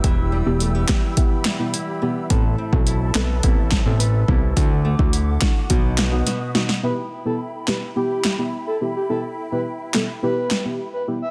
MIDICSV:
0, 0, Header, 1, 7, 480
1, 0, Start_track
1, 0, Key_signature, 1, "minor"
1, 0, Tempo, 566038
1, 34, Time_signature, 4, 2, 24, 8
1, 9587, End_track
2, 0, Start_track
2, 0, Title_t, "Flute section"
2, 0, Program_c, 0, 73
2, 0, Note_on_c, 0, 67, 85
2, 0, Note_on_c, 0, 76, 74
2, 0, Note_on_c, 0, 83, 73
2, 0, Note_on_c, 0, 88, 92
2, 1919, Note_off_c, 0, 67, 0
2, 1920, Note_off_c, 0, 88, 0
2, 1951, Note_on_c, 0, 81, 89
2, 1953, Note_on_c, 0, 69, 84
2, 3604, Note_off_c, 0, 81, 0
2, 3664, Note_off_c, 0, 83, 0
2, 3872, Note_on_c, 0, 86, 91
2, 3873, Note_on_c, 0, 78, 80
2, 4587, Note_off_c, 0, 69, 0
2, 4617, Note_off_c, 0, 76, 0
2, 4823, Note_off_c, 0, 86, 0
2, 4829, Note_on_c, 0, 75, 75
2, 4831, Note_on_c, 0, 71, 82
2, 4831, Note_on_c, 0, 87, 92
2, 5774, Note_off_c, 0, 78, 0
2, 5782, Note_off_c, 0, 71, 0
2, 5782, Note_off_c, 0, 75, 0
2, 5783, Note_off_c, 0, 87, 0
2, 5791, Note_on_c, 0, 64, 79
2, 5792, Note_on_c, 0, 76, 69
2, 5792, Note_on_c, 0, 79, 70
2, 5792, Note_on_c, 0, 83, 83
2, 9587, Note_off_c, 0, 64, 0
2, 9587, Note_off_c, 0, 76, 0
2, 9587, Note_off_c, 0, 79, 0
2, 9587, Note_off_c, 0, 83, 0
2, 9587, End_track
3, 0, Start_track
3, 0, Title_t, "Soft synth lead"
3, 0, Program_c, 1, 80
3, 5793, Note_on_c, 1, 71, 100
3, 5868, Note_off_c, 1, 71, 0
3, 6154, Note_on_c, 1, 69, 73
3, 6229, Note_off_c, 1, 69, 0
3, 6512, Note_on_c, 1, 71, 78
3, 6588, Note_off_c, 1, 71, 0
3, 6751, Note_on_c, 1, 67, 101
3, 7091, Note_off_c, 1, 67, 0
3, 7352, Note_on_c, 1, 69, 75
3, 7428, Note_off_c, 1, 69, 0
3, 7596, Note_on_c, 1, 67, 75
3, 7671, Note_off_c, 1, 67, 0
3, 7713, Note_on_c, 1, 69, 98
3, 7788, Note_off_c, 1, 69, 0
3, 8071, Note_on_c, 1, 71, 70
3, 8148, Note_off_c, 1, 71, 0
3, 8434, Note_on_c, 1, 69, 80
3, 8509, Note_off_c, 1, 69, 0
3, 8672, Note_on_c, 1, 71, 112
3, 9011, Note_off_c, 1, 71, 0
3, 9272, Note_on_c, 1, 71, 74
3, 9348, Note_off_c, 1, 71, 0
3, 9516, Note_on_c, 1, 76, 74
3, 9587, Note_off_c, 1, 76, 0
3, 9587, End_track
4, 0, Start_track
4, 0, Title_t, "Synth stab"
4, 0, Program_c, 2, 62
4, 30, Note_on_c, 2, 59, 90
4, 33, Note_on_c, 2, 64, 86
4, 34, Note_on_c, 2, 67, 101
4, 149, Note_off_c, 2, 59, 0
4, 150, Note_off_c, 2, 64, 0
4, 151, Note_off_c, 2, 67, 0
4, 389, Note_on_c, 2, 59, 79
4, 391, Note_on_c, 2, 64, 71
4, 394, Note_on_c, 2, 67, 91
4, 508, Note_off_c, 2, 59, 0
4, 509, Note_off_c, 2, 64, 0
4, 511, Note_off_c, 2, 67, 0
4, 750, Note_on_c, 2, 59, 77
4, 752, Note_on_c, 2, 64, 69
4, 755, Note_on_c, 2, 67, 85
4, 869, Note_off_c, 2, 59, 0
4, 870, Note_off_c, 2, 64, 0
4, 871, Note_off_c, 2, 67, 0
4, 990, Note_on_c, 2, 59, 96
4, 991, Note_on_c, 2, 64, 91
4, 994, Note_on_c, 2, 67, 108
4, 1323, Note_off_c, 2, 59, 0
4, 1324, Note_off_c, 2, 64, 0
4, 1325, Note_off_c, 2, 67, 0
4, 1350, Note_on_c, 2, 59, 74
4, 1353, Note_on_c, 2, 64, 71
4, 1355, Note_on_c, 2, 67, 87
4, 1469, Note_off_c, 2, 59, 0
4, 1470, Note_off_c, 2, 64, 0
4, 1471, Note_off_c, 2, 67, 0
4, 1712, Note_on_c, 2, 59, 76
4, 1713, Note_on_c, 2, 64, 72
4, 1717, Note_on_c, 2, 67, 89
4, 1830, Note_off_c, 2, 59, 0
4, 1830, Note_off_c, 2, 64, 0
4, 1832, Note_off_c, 2, 67, 0
4, 1949, Note_on_c, 2, 59, 93
4, 1953, Note_on_c, 2, 60, 87
4, 1954, Note_on_c, 2, 69, 100
4, 2068, Note_off_c, 2, 59, 0
4, 2070, Note_off_c, 2, 60, 0
4, 2070, Note_off_c, 2, 69, 0
4, 2311, Note_on_c, 2, 59, 78
4, 2314, Note_on_c, 2, 60, 74
4, 2316, Note_on_c, 2, 69, 88
4, 2429, Note_off_c, 2, 59, 0
4, 2431, Note_off_c, 2, 60, 0
4, 2432, Note_off_c, 2, 69, 0
4, 2671, Note_on_c, 2, 59, 79
4, 2674, Note_on_c, 2, 60, 74
4, 2677, Note_on_c, 2, 69, 87
4, 2789, Note_off_c, 2, 59, 0
4, 2791, Note_off_c, 2, 60, 0
4, 2792, Note_off_c, 2, 69, 0
4, 2909, Note_on_c, 2, 59, 100
4, 2912, Note_on_c, 2, 60, 89
4, 2914, Note_on_c, 2, 69, 107
4, 3243, Note_off_c, 2, 59, 0
4, 3244, Note_off_c, 2, 60, 0
4, 3245, Note_off_c, 2, 69, 0
4, 3269, Note_on_c, 2, 59, 76
4, 3272, Note_on_c, 2, 60, 68
4, 3275, Note_on_c, 2, 69, 90
4, 3388, Note_off_c, 2, 59, 0
4, 3390, Note_off_c, 2, 60, 0
4, 3391, Note_off_c, 2, 69, 0
4, 3631, Note_on_c, 2, 59, 78
4, 3633, Note_on_c, 2, 60, 72
4, 3635, Note_on_c, 2, 69, 86
4, 3749, Note_off_c, 2, 59, 0
4, 3750, Note_off_c, 2, 60, 0
4, 3751, Note_off_c, 2, 69, 0
4, 3871, Note_on_c, 2, 62, 94
4, 3873, Note_on_c, 2, 64, 88
4, 3876, Note_on_c, 2, 66, 100
4, 3989, Note_off_c, 2, 62, 0
4, 3990, Note_off_c, 2, 64, 0
4, 3992, Note_off_c, 2, 66, 0
4, 4230, Note_on_c, 2, 62, 79
4, 4231, Note_on_c, 2, 64, 72
4, 4235, Note_on_c, 2, 66, 86
4, 4349, Note_off_c, 2, 62, 0
4, 4349, Note_off_c, 2, 64, 0
4, 4351, Note_off_c, 2, 66, 0
4, 4590, Note_on_c, 2, 62, 79
4, 4591, Note_on_c, 2, 64, 72
4, 4594, Note_on_c, 2, 66, 86
4, 4708, Note_off_c, 2, 62, 0
4, 4709, Note_off_c, 2, 64, 0
4, 4711, Note_off_c, 2, 66, 0
4, 4830, Note_on_c, 2, 59, 94
4, 4834, Note_on_c, 2, 63, 86
4, 4835, Note_on_c, 2, 66, 113
4, 5163, Note_off_c, 2, 59, 0
4, 5165, Note_off_c, 2, 63, 0
4, 5166, Note_off_c, 2, 66, 0
4, 5189, Note_on_c, 2, 59, 78
4, 5192, Note_on_c, 2, 63, 73
4, 5195, Note_on_c, 2, 66, 83
4, 5308, Note_off_c, 2, 59, 0
4, 5310, Note_off_c, 2, 63, 0
4, 5311, Note_off_c, 2, 66, 0
4, 5551, Note_on_c, 2, 59, 76
4, 5553, Note_on_c, 2, 63, 74
4, 5555, Note_on_c, 2, 66, 90
4, 5669, Note_off_c, 2, 59, 0
4, 5670, Note_off_c, 2, 63, 0
4, 5671, Note_off_c, 2, 66, 0
4, 5790, Note_on_c, 2, 59, 92
4, 5793, Note_on_c, 2, 64, 83
4, 5795, Note_on_c, 2, 67, 98
4, 5909, Note_off_c, 2, 59, 0
4, 5910, Note_off_c, 2, 64, 0
4, 5911, Note_off_c, 2, 67, 0
4, 6149, Note_on_c, 2, 59, 73
4, 6151, Note_on_c, 2, 64, 67
4, 6154, Note_on_c, 2, 67, 79
4, 6268, Note_off_c, 2, 59, 0
4, 6269, Note_off_c, 2, 64, 0
4, 6271, Note_off_c, 2, 67, 0
4, 6509, Note_on_c, 2, 59, 76
4, 6512, Note_on_c, 2, 64, 67
4, 6515, Note_on_c, 2, 67, 82
4, 6628, Note_off_c, 2, 59, 0
4, 6630, Note_off_c, 2, 64, 0
4, 6631, Note_off_c, 2, 67, 0
4, 6748, Note_on_c, 2, 59, 94
4, 6750, Note_on_c, 2, 64, 88
4, 6753, Note_on_c, 2, 67, 101
4, 7082, Note_off_c, 2, 59, 0
4, 7083, Note_off_c, 2, 64, 0
4, 7084, Note_off_c, 2, 67, 0
4, 7109, Note_on_c, 2, 59, 77
4, 7111, Note_on_c, 2, 64, 69
4, 7113, Note_on_c, 2, 67, 84
4, 7228, Note_off_c, 2, 59, 0
4, 7229, Note_off_c, 2, 64, 0
4, 7230, Note_off_c, 2, 67, 0
4, 7471, Note_on_c, 2, 59, 72
4, 7473, Note_on_c, 2, 64, 70
4, 7475, Note_on_c, 2, 67, 80
4, 7589, Note_off_c, 2, 59, 0
4, 7590, Note_off_c, 2, 64, 0
4, 7591, Note_off_c, 2, 67, 0
4, 7710, Note_on_c, 2, 59, 84
4, 7712, Note_on_c, 2, 64, 82
4, 7716, Note_on_c, 2, 67, 98
4, 7829, Note_off_c, 2, 59, 0
4, 7830, Note_off_c, 2, 64, 0
4, 7832, Note_off_c, 2, 67, 0
4, 8072, Note_on_c, 2, 59, 72
4, 8073, Note_on_c, 2, 64, 67
4, 8075, Note_on_c, 2, 67, 82
4, 8190, Note_off_c, 2, 59, 0
4, 8190, Note_off_c, 2, 64, 0
4, 8191, Note_off_c, 2, 67, 0
4, 8431, Note_on_c, 2, 59, 74
4, 8432, Note_on_c, 2, 64, 69
4, 8435, Note_on_c, 2, 67, 82
4, 8549, Note_off_c, 2, 59, 0
4, 8550, Note_off_c, 2, 64, 0
4, 8551, Note_off_c, 2, 67, 0
4, 8671, Note_on_c, 2, 59, 96
4, 8673, Note_on_c, 2, 64, 85
4, 8676, Note_on_c, 2, 67, 104
4, 9003, Note_off_c, 2, 59, 0
4, 9004, Note_off_c, 2, 64, 0
4, 9006, Note_off_c, 2, 67, 0
4, 9031, Note_on_c, 2, 59, 74
4, 9033, Note_on_c, 2, 64, 69
4, 9036, Note_on_c, 2, 67, 81
4, 9149, Note_off_c, 2, 59, 0
4, 9150, Note_off_c, 2, 64, 0
4, 9151, Note_off_c, 2, 67, 0
4, 9391, Note_on_c, 2, 59, 75
4, 9393, Note_on_c, 2, 64, 71
4, 9395, Note_on_c, 2, 67, 87
4, 9509, Note_off_c, 2, 59, 0
4, 9510, Note_off_c, 2, 64, 0
4, 9511, Note_off_c, 2, 67, 0
4, 9587, End_track
5, 0, Start_track
5, 0, Title_t, "Nylon-string guitar"
5, 0, Program_c, 3, 24
5, 0, Note_on_c, 3, 55, 61
5, 0, Note_on_c, 3, 59, 66
5, 0, Note_on_c, 3, 64, 72
5, 33, Note_on_c, 3, 52, 90
5, 262, Note_off_c, 3, 55, 0
5, 272, Note_on_c, 3, 55, 69
5, 510, Note_off_c, 3, 59, 0
5, 513, Note_on_c, 3, 57, 64
5, 633, Note_off_c, 3, 57, 0
5, 633, Note_on_c, 3, 59, 57
5, 749, Note_off_c, 3, 64, 0
5, 752, Note_on_c, 3, 64, 72
5, 983, Note_off_c, 3, 59, 0
5, 993, Note_on_c, 3, 59, 68
5, 1222, Note_off_c, 3, 55, 0
5, 1233, Note_on_c, 3, 55, 64
5, 1467, Note_off_c, 3, 64, 0
5, 1470, Note_on_c, 3, 64, 71
5, 1707, Note_off_c, 3, 59, 0
5, 1711, Note_on_c, 3, 59, 63
5, 1951, Note_on_c, 3, 45, 92
5, 2001, Note_off_c, 3, 55, 0
5, 2187, Note_off_c, 3, 59, 0
5, 2191, Note_on_c, 3, 60, 65
5, 2428, Note_off_c, 3, 64, 0
5, 2431, Note_on_c, 3, 64, 63
5, 2670, Note_on_c, 3, 71, 76
5, 2906, Note_off_c, 3, 64, 0
5, 2909, Note_on_c, 3, 64, 69
5, 3001, Note_off_c, 3, 52, 0
5, 3139, Note_off_c, 3, 60, 0
5, 3149, Note_on_c, 3, 60, 64
5, 3379, Note_off_c, 3, 71, 0
5, 3389, Note_on_c, 3, 71, 72
5, 3621, Note_off_c, 3, 64, 0
5, 3631, Note_on_c, 3, 64, 65
5, 3871, Note_on_c, 3, 50, 89
5, 3872, Note_off_c, 3, 45, 0
5, 3919, Note_off_c, 3, 60, 0
5, 3919, Note_off_c, 3, 71, 0
5, 3920, Note_off_c, 3, 64, 0
5, 4111, Note_on_c, 3, 57, 69
5, 4350, Note_on_c, 3, 64, 66
5, 4591, Note_on_c, 3, 66, 71
5, 4829, Note_off_c, 3, 50, 0
5, 4832, Note_on_c, 3, 47, 90
5, 4880, Note_off_c, 3, 57, 0
5, 4880, Note_off_c, 3, 64, 0
5, 4880, Note_off_c, 3, 66, 0
5, 5073, Note_on_c, 3, 59, 64
5, 5313, Note_on_c, 3, 66, 71
5, 5554, Note_on_c, 3, 63, 68
5, 5841, Note_off_c, 3, 47, 0
5, 5842, Note_off_c, 3, 63, 0
5, 5842, Note_off_c, 3, 66, 0
5, 6266, Note_off_c, 3, 59, 0
5, 9587, End_track
6, 0, Start_track
6, 0, Title_t, "Analog synth bass"
6, 0, Program_c, 4, 38
6, 34, Note_on_c, 4, 28, 106
6, 361, Note_off_c, 4, 28, 0
6, 394, Note_on_c, 4, 28, 84
6, 721, Note_off_c, 4, 28, 0
6, 1953, Note_on_c, 4, 33, 110
6, 2171, Note_off_c, 4, 33, 0
6, 2313, Note_on_c, 4, 35, 91
6, 2640, Note_off_c, 4, 35, 0
6, 2673, Note_on_c, 4, 35, 91
6, 2891, Note_off_c, 4, 35, 0
6, 2914, Note_on_c, 4, 33, 101
6, 3241, Note_off_c, 4, 33, 0
6, 3271, Note_on_c, 4, 33, 97
6, 3599, Note_off_c, 4, 33, 0
6, 3632, Note_on_c, 4, 36, 92
6, 3851, Note_off_c, 4, 36, 0
6, 3873, Note_on_c, 4, 38, 112
6, 4200, Note_off_c, 4, 38, 0
6, 4233, Note_on_c, 4, 38, 90
6, 4560, Note_off_c, 4, 38, 0
6, 4835, Note_on_c, 4, 35, 103
6, 5280, Note_off_c, 4, 35, 0
6, 9587, End_track
7, 0, Start_track
7, 0, Title_t, "Drums"
7, 33, Note_on_c, 9, 36, 109
7, 33, Note_on_c, 9, 42, 77
7, 118, Note_off_c, 9, 36, 0
7, 118, Note_off_c, 9, 42, 0
7, 512, Note_on_c, 9, 42, 74
7, 597, Note_off_c, 9, 42, 0
7, 749, Note_on_c, 9, 39, 102
7, 753, Note_on_c, 9, 38, 121
7, 754, Note_on_c, 9, 36, 95
7, 833, Note_off_c, 9, 39, 0
7, 838, Note_off_c, 9, 38, 0
7, 839, Note_off_c, 9, 36, 0
7, 992, Note_on_c, 9, 42, 83
7, 994, Note_on_c, 9, 36, 109
7, 1077, Note_off_c, 9, 42, 0
7, 1079, Note_off_c, 9, 36, 0
7, 1228, Note_on_c, 9, 39, 92
7, 1233, Note_on_c, 9, 38, 112
7, 1313, Note_off_c, 9, 39, 0
7, 1318, Note_off_c, 9, 38, 0
7, 1473, Note_on_c, 9, 42, 81
7, 1558, Note_off_c, 9, 42, 0
7, 1952, Note_on_c, 9, 42, 74
7, 1953, Note_on_c, 9, 36, 112
7, 2036, Note_off_c, 9, 42, 0
7, 2038, Note_off_c, 9, 36, 0
7, 2312, Note_on_c, 9, 36, 98
7, 2397, Note_off_c, 9, 36, 0
7, 2431, Note_on_c, 9, 42, 74
7, 2515, Note_off_c, 9, 42, 0
7, 2668, Note_on_c, 9, 39, 101
7, 2673, Note_on_c, 9, 38, 118
7, 2753, Note_off_c, 9, 39, 0
7, 2758, Note_off_c, 9, 38, 0
7, 2911, Note_on_c, 9, 42, 80
7, 2914, Note_on_c, 9, 36, 103
7, 2996, Note_off_c, 9, 42, 0
7, 2998, Note_off_c, 9, 36, 0
7, 3148, Note_on_c, 9, 39, 94
7, 3152, Note_on_c, 9, 36, 92
7, 3153, Note_on_c, 9, 38, 112
7, 3233, Note_off_c, 9, 39, 0
7, 3237, Note_off_c, 9, 36, 0
7, 3238, Note_off_c, 9, 38, 0
7, 3392, Note_on_c, 9, 42, 80
7, 3477, Note_off_c, 9, 42, 0
7, 3633, Note_on_c, 9, 36, 91
7, 3717, Note_off_c, 9, 36, 0
7, 3873, Note_on_c, 9, 36, 114
7, 3874, Note_on_c, 9, 42, 75
7, 3958, Note_off_c, 9, 36, 0
7, 3958, Note_off_c, 9, 42, 0
7, 4233, Note_on_c, 9, 36, 97
7, 4317, Note_off_c, 9, 36, 0
7, 4351, Note_on_c, 9, 42, 77
7, 4436, Note_off_c, 9, 42, 0
7, 4590, Note_on_c, 9, 39, 97
7, 4594, Note_on_c, 9, 36, 99
7, 4594, Note_on_c, 9, 38, 123
7, 4675, Note_off_c, 9, 39, 0
7, 4679, Note_off_c, 9, 36, 0
7, 4679, Note_off_c, 9, 38, 0
7, 4832, Note_on_c, 9, 42, 82
7, 4834, Note_on_c, 9, 36, 103
7, 4917, Note_off_c, 9, 42, 0
7, 4919, Note_off_c, 9, 36, 0
7, 5069, Note_on_c, 9, 39, 89
7, 5074, Note_on_c, 9, 38, 110
7, 5154, Note_off_c, 9, 39, 0
7, 5158, Note_off_c, 9, 38, 0
7, 5313, Note_on_c, 9, 42, 80
7, 5314, Note_on_c, 9, 38, 62
7, 5398, Note_off_c, 9, 42, 0
7, 5399, Note_off_c, 9, 38, 0
7, 5553, Note_on_c, 9, 38, 100
7, 5638, Note_off_c, 9, 38, 0
7, 5673, Note_on_c, 9, 38, 102
7, 5758, Note_off_c, 9, 38, 0
7, 6509, Note_on_c, 9, 39, 92
7, 6513, Note_on_c, 9, 38, 111
7, 6594, Note_off_c, 9, 39, 0
7, 6598, Note_off_c, 9, 38, 0
7, 6989, Note_on_c, 9, 39, 79
7, 6994, Note_on_c, 9, 38, 101
7, 7074, Note_off_c, 9, 39, 0
7, 7079, Note_off_c, 9, 38, 0
7, 8428, Note_on_c, 9, 39, 89
7, 8433, Note_on_c, 9, 38, 112
7, 8513, Note_off_c, 9, 39, 0
7, 8518, Note_off_c, 9, 38, 0
7, 8909, Note_on_c, 9, 39, 82
7, 8913, Note_on_c, 9, 38, 104
7, 8994, Note_off_c, 9, 39, 0
7, 8998, Note_off_c, 9, 38, 0
7, 9587, End_track
0, 0, End_of_file